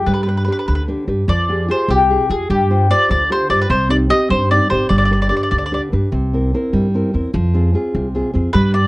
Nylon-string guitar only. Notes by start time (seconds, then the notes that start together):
0.07 G3
0.27 D4 G4 B4
0.48 D4 G4 B4
0.68 D3
0.88 D4 G4 B4
1.07 D4 G4 B4
1.28 F3
1.49 F4 G4 G#4
1.68 F4 G4 G#4
1.88 C3
2.10 F4 G4 G#4
2.29 F4 G4 G#4
2.50 G3
2.70 F4 G4 C5
2.90 F4 G4 C5
3.09 D3
3.30 F4 G4 C5
3.49 F4 G4 C5
3.69 C3
3.89 C4 D#4 G4
4.09 C4 D#4 G4
4.29 G3
4.50 C4 D#4 G4
4.70 C4 D#4 G4
4.90 G3
5.11 D4 G4 B4
5.31 D4 G4 B4
5.52 D3
5.72 D4 G4 B4
5.92 D4 G4 B4
6.12 C3
6.33 C4 E4 A#4
6.54 C4 E4 A#4
6.73 G3
6.94 C4 E4 A#4
7.14 C4 E4 A#4
7.33 F3
7.54 C4 F4 G#4
7.74 C4 F4 G#4
7.95 C3
8.15 C4 F4 G#4
8.34 C4 F4 G#4
8.54 G3
8.74 D4 G4 B4